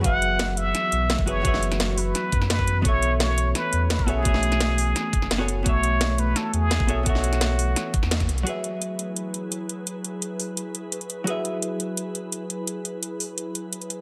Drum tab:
HH |x-x-x-x-x-x-x-x-|x-xxx-o-x-x-x-x-|x-x-x-x-x-x-x-x-|x-xxx-o-x-x-x-x-|
SD |----o---o---o---|-o-oo---o--oo---|----o---o---o---|-o-oo---o--oo---|
BD |o------------o--|o---------o--o--|o------------o--|o---------o-----|

HH |x-x-x-x-x-x-x-x-|x-xxx-o-x-x-xxxx|x-x-x-x-x-x-x-x-|x-x-x-o-x-x-xxx-|
SD |----o---o---o---|-o-oo---o--ooo--|----------------|----------------|
BD |o------------o--|o---------o--o--|----------------|----------------|

HH |x-x-x-x-x-x-x-x-|x-x-x-o-x-x-xxx-|
SD |----------------|----------------|
BD |----------------|----------------|